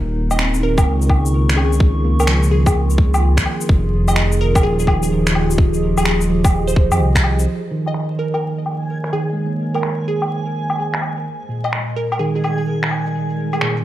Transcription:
0.00 0.85 D#1 medium
0.00 3.70 D#3 medium
0.00 0.11 A#3 medium
0.00 4.36 D#4 medium
0.00 1.46 A#4 medium
0.23 12.13 F4 medium
0.30 11.25 G#4 medium
0.30 0.55 D#5 medium
0.30 low woodblock soft
0.30 shaker medium
0.39 1.70 C4 medium
0.39 finger snap loud
0.49 3.70 C#6 medium
0.54 shaker soft
0.60 1.82 D#4 medium
0.60 0.73 A#4 medium
0.78 0.83 A#4 medium
0.78 kick loud
0.78 low woodblock medium
0.78 shaker soft
0.86 2.17 C#2 medium
1.02 shaker soft
1.10 kick medium
1.10 low woodblock soft
1.26 shaker medium
1.49 finger snap loud
1.49 shaker soft
1.56 2.88 C#4 medium
1.56 1.82 G#4 medium
1.56 low woodblock soft
1.73 shaker soft
1.80 kick loud
2.04 3.35 A#3 medium
2.19 3.45 C#2 medium
2.19 2.44 A#4 medium
2.19 low woodblock soft
2.19 shaker soft
2.27 3.59 F3 medium
2.27 finger snap loud
2.43 shaker soft
2.51 3.19 G#4 medium
2.66 kick loud
2.66 low woodblock medium
2.66 shaker soft
2.75 3.89 D#3 medium
2.90 shaker soft
2.98 kick loud
3.14 low woodblock medium
3.14 shaker medium
3.37 finger snap medium
3.37 kick medium
3.37 shaker soft
3.46 low woodblock soft
3.61 shaker medium
3.69 4.63 F1 loud
3.69 7.47 F3 medium
3.69 kick loud
4.08 7.48 G4 medium
4.08 4.33 D#5 medium
4.08 low woodblock medium
4.08 shaker medium
4.16 finger snap medium
4.26 11.94 D#5 medium
4.32 shaker soft
4.41 4.50 A#4 medium
4.55 4.61 A#4 medium
4.55 kick loud
4.55 low woodblock medium
4.55 shaker medium
4.63 5.95 D#1 medium
4.63 5.95 F3 medium
4.63 4.73 G#4 medium
4.79 4.85 G#4 medium
4.79 shaker soft
4.87 6.19 D#3 medium
4.87 4.98 G#4 medium
4.87 kick medium
4.87 low woodblock medium
5.03 5.08 G#4 medium
5.03 shaker medium
5.27 finger snap medium
5.27 shaker soft
5.35 low woodblock soft
5.51 shaker medium
5.58 kick loud
5.74 shaker soft
5.98 6.91 D#1 medium
5.98 6.22 G#4 medium
5.98 low woodblock medium
5.98 shaker medium
6.05 finger snap loud
6.21 shaker soft
6.30 7.60 F3 medium
6.45 kick loud
6.45 low woodblock medium
6.45 shaker medium
6.68 7.15 C5 medium
6.68 shaker soft
6.76 kick loud
6.91 7.01 F2 medium
6.91 low woodblock medium
6.91 shaker medium
6.99 7.46 C2 medium
7.15 finger snap loud
7.15 kick medium
7.15 shaker soft
7.24 low woodblock soft
7.39 shaker medium
7.47 12.35 A#3 medium
7.47 13.84 G#5 medium
7.63 shaker soft
7.71 9.02 D#3 medium
7.86 8.11 D#5 medium
7.86 low woodblock soft
7.86 shaker soft
7.94 finger snap medium
8.10 13.84 C5 medium
8.10 shaker soft
8.19 8.28 A#4 medium
8.31 8.39 A#4 medium
8.31 11.26 C#5 medium
8.31 low woodblock medium
8.31 shaker soft
8.58 shaker soft
8.66 low woodblock soft
8.81 shaker soft
9.04 finger snap medium
9.13 10.44 D#3 medium
9.13 9.38 G#4 medium
9.13 low woodblock soft
9.33 10.55 G#3 soft
9.46 10.72 A#3 soft
9.52 shaker soft
9.74 9.99 A#4 medium
9.74 low woodblock soft
9.74 shaker soft
9.83 finger snap medium
9.99 shaker soft
10.08 10.75 G#4 medium
10.22 low woodblock medium
10.22 shaker medium
10.46 shaker soft
10.70 low woodblock medium
10.70 shaker medium
10.94 finger snap medium
11.02 low woodblock soft
11.17 shaker soft
11.26 13.84 G#3 medium
11.41 13.84 G3 medium
11.41 13.84 D#4 medium
11.41 shaker soft
11.49 12.80 A#2 soft
11.64 11.89 D#5 medium
11.64 low woodblock soft
11.64 shaker soft
11.73 finger snap medium
11.89 13.84 A#4 medium
11.89 shaker soft
11.96 12.06 A#4 medium
12.12 12.17 A#4 medium
12.12 low woodblock medium
12.12 shaker medium
12.19 13.51 D#3 medium
12.19 12.29 G#4 medium
12.35 12.41 G#4 medium
12.35 shaker soft
12.44 12.53 G#4 medium
12.44 low woodblock soft
12.58 12.64 G#4 medium
12.58 shaker soft
12.83 finger snap medium
12.91 low woodblock soft
13.06 shaker medium
13.30 shaker soft
13.53 13.78 G#4 medium
13.53 low woodblock soft
13.53 shaker soft
13.61 13.84 A#2 medium
13.61 finger snap loud
13.77 shaker soft

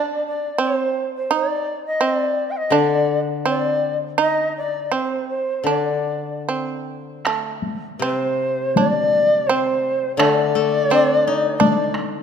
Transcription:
0.00 0.58 D4 medium
0.00 0.26 D5 medium
0.28 0.59 D5 medium
0.58 1.30 C4 medium
0.58 1.10 C5 medium
1.16 1.31 C5 medium
1.31 2.00 D#4 medium
1.31 1.82 D5 medium
1.86 2.06 D#5 medium
2.01 2.71 C4 medium
2.01 2.52 D5 medium
2.51 2.58 G5 medium
2.57 2.77 D#5 medium
2.70 4.90 D3 medium
2.70 3.44 D4 medium
2.75 3.20 D5 medium
3.46 4.17 C4 medium
3.46 3.97 D5 medium
4.18 4.91 D#4 medium
4.18 4.53 D#5 medium
4.57 4.94 D5 medium
4.92 5.66 C4 medium
4.92 5.28 C5 medium
5.29 5.64 C5 medium
5.64 8.00 D3 soft
5.64 6.47 D4 medium
5.68 6.44 D5 medium
6.49 7.26 C4 soft
7.25 8.01 A3 medium
7.25 taiko rim soft
7.62 taiko high soft
7.99 10.19 C3 soft
7.99 8.77 C4 medium
7.99 8.12 B4 medium
8.12 8.76 C5 medium
8.74 9.49 D4 medium
8.74 9.48 D5 medium
8.74 taiko high medium
9.47 10.20 C4 medium
9.47 10.15 C5 medium
10.16 12.23 D3 soft
10.16 10.90 A3 medium
10.16 11.54 D5 medium
10.16 taiko rim medium
10.55 11.95 A3 soft
10.90 11.59 C4 medium
10.90 12.23 D4 soft
11.27 12.23 D#4 soft
11.57 12.23 D4 medium
11.57 12.00 D5 medium
11.57 taiko high medium
11.95 taiko rim soft

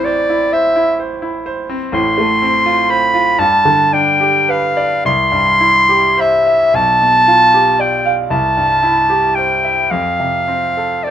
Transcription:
0.00 1.90 A1 medium
0.00 1.91 A2 medium
0.00 1.97 E3 medium
0.00 1.69 C4 medium
0.00 0.20 E4 medium
0.05 0.44 C5 medium
0.05 0.54 D5 medium
0.30 0.67 E4 medium
0.53 0.91 C5 medium
0.53 1.00 E5 medium
0.76 1.14 E4 medium
1.00 1.37 C5 medium
1.22 1.60 E4 medium
1.46 1.84 C5 medium
1.69 1.94 C4 medium
1.92 3.35 A1 medium
1.92 3.35 A2 medium
1.92 2.92 C6 loud
2.18 2.57 A3 medium
2.42 2.81 C4 medium
2.66 3.05 F4 medium
2.90 3.29 C5 medium
2.90 3.41 B5 loud
3.14 3.39 F4 medium
3.38 5.02 G2 medium
3.38 3.94 A5 loud
3.65 4.10 D3 medium
3.93 4.38 D4 medium
3.93 4.52 G5 medium
4.20 4.67 G4 medium
4.49 4.95 B4 medium
4.49 5.05 F5 medium
4.77 5.05 D5 medium
5.05 6.71 C2 medium
5.05 6.22 C6 loud
5.32 5.78 G2 medium
5.60 6.07 E4 medium
5.89 6.36 G4 medium
6.17 6.63 C5 medium
6.17 6.77 E5 medium
6.46 6.75 E5 medium
6.74 8.27 B1 medium
6.74 7.82 A5 loud
7.01 7.43 B2 medium
7.28 7.69 F4 medium
7.54 7.95 G4 medium
7.79 8.21 D5 medium
7.79 8.16 G5 medium
8.06 8.31 F5 medium
8.30 9.86 C2 medium
8.30 9.36 A5 medium
8.57 8.99 G2 soft
8.83 9.25 E4 medium
9.10 9.52 G4 medium
9.35 9.80 C5 medium
9.35 9.92 G5 medium
9.65 9.91 E5 medium
9.91 11.11 F2 medium
9.91 11.05 F5 medium
10.20 10.65 C3 soft
10.48 10.94 C4 soft
10.77 11.11 A4 soft
11.03 11.11 C5 medium
11.03 11.11 D5 medium

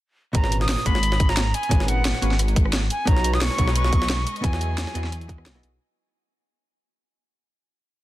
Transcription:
0.33 0.76 G#1 loud
0.33 0.83 A#2 medium
0.33 0.84 C#4 medium
0.33 0.85 G#4 medium
0.33 0.59 A#5 loud
0.33 kick loud
0.33 closed hi-hat medium
0.37 0.85 B4 medium
0.44 snare soft
0.52 closed hi-hat medium
0.61 0.87 D#6 loud
0.61 snare soft
0.69 snare loud
0.69 closed hi-hat loud
0.69 open hi-hat medium
0.78 snare soft
0.85 1.53 G#1 loud
0.85 0.95 A#3 medium
0.85 0.95 C#4 medium
0.85 0.96 F#4 medium
0.85 0.96 G#4 medium
0.85 0.96 B4 medium
0.85 1.31 B5 loud
0.85 kick medium
0.85 cross-stick soft
0.85 closed hi-hat medium
0.95 snare medium
1.03 closed hi-hat medium
1.12 snare medium
1.20 kick loud
1.20 closed hi-hat medium
1.29 1.56 A#5 loud
1.29 snare medium
1.37 snare loud
1.37 closed hi-hat loud
1.37 closed hi-hat medium
1.54 1.82 G#5 loud
1.54 closed hi-hat medium
1.63 closed hi-hat soft
1.69 2.13 G#1 loud
1.69 2.19 A#2 medium
1.69 2.20 C#4 medium
1.69 2.21 G#4 medium
1.69 kick loud
1.69 closed hi-hat medium
1.73 2.21 B4 medium
1.80 1.90 G#5 medium
1.80 snare medium
1.88 2.40 F#5 medium
1.88 closed hi-hat medium
2.05 snare loud
2.05 closed hi-hat medium
2.14 snare soft
2.21 2.89 G#1 loud
2.21 2.31 A#3 medium
2.21 2.32 C#4 medium
2.21 2.32 F#4 medium
2.21 2.32 G#4 medium
2.21 2.32 B4 loud
2.21 closed hi-hat medium
2.31 snare soft
2.39 cross-stick soft
2.39 closed hi-hat medium
2.48 closed hi-hat soft
2.56 kick loud
2.56 closed hi-hat medium
2.65 cross-stick medium
2.73 snare loud
2.73 closed hi-hat loud
2.73 closed hi-hat medium
2.90 3.09 G#5 medium
2.90 closed hi-hat medium
3.05 3.49 B1 loud
3.05 4.43 G#3 medium
3.05 3.56 B3 medium
3.05 4.43 C#4 medium
3.05 3.56 D#4 medium
3.05 3.57 F#4 medium
3.05 3.57 G#4 medium
3.05 4.42 B4 medium
3.05 5.78 D#5 medium
3.05 3.35 A#5 loud
3.05 kick loud
3.05 closed hi-hat medium
3.05 closed hi-hat loud
3.10 3.58 C#5 medium
3.17 snare soft
3.24 closed hi-hat medium
3.34 3.43 D#6 loud
3.34 snare soft
3.41 3.75 C#6 loud
3.41 snare loud
3.41 closed hi-hat medium
3.41 open hi-hat medium
3.51 snare soft
3.57 4.25 B1 loud
3.57 3.68 B3 medium
3.57 3.68 D#4 medium
3.57 3.68 F#4 medium
3.57 3.68 G#4 medium
3.57 3.69 C#5 medium
3.57 kick medium
3.57 cross-stick soft
3.57 closed hi-hat medium
3.68 snare medium
3.76 4.46 C#6 loud
3.76 closed hi-hat medium
3.85 snare medium
3.93 kick loud
3.93 closed hi-hat medium
4.02 snare medium
4.10 snare loud
4.10 closed hi-hat medium
4.27 closed hi-hat medium
4.36 closed hi-hat soft
4.42 4.85 E2 loud
4.42 5.79 F#3 medium
4.42 4.92 B3 medium
4.42 4.93 E4 medium
4.42 5.79 E4 medium
4.42 4.93 F#4 medium
4.42 5.79 G#4 medium
4.42 4.94 G#4 medium
4.42 5.46 G#5 loud
4.42 kick loud
4.42 closed hi-hat medium
4.46 4.94 D#5 medium
4.53 snare medium
4.61 closed hi-hat medium
4.78 snare loud
4.78 closed hi-hat medium
4.87 snare soft
4.94 5.48 E2 loud
4.94 5.04 B3 medium
4.94 5.04 E4 medium
4.94 5.05 F#4 medium
4.94 5.05 G#4 medium
4.94 5.05 D#5 loud
4.94 closed hi-hat medium
5.04 snare soft
5.12 cross-stick soft
5.12 closed hi-hat medium
5.21 closed hi-hat soft
5.28 5.52 B3 medium
5.28 5.53 E4 medium
5.28 5.53 F#4 medium
5.28 5.53 G#4 medium
5.28 5.54 D#5 medium
5.28 kick loud
5.28 closed hi-hat medium
5.38 cross-stick medium
5.46 5.62 B1 loud
5.46 snare loud
5.46 closed hi-hat loud
5.46 closed hi-hat medium
5.54 5.78 B3 medium
5.54 5.78 E4 medium
5.54 5.78 F#4 medium
5.54 5.79 G#4 medium
5.54 5.79 D#5 loud
5.63 5.79 B1 medium
5.63 closed hi-hat medium

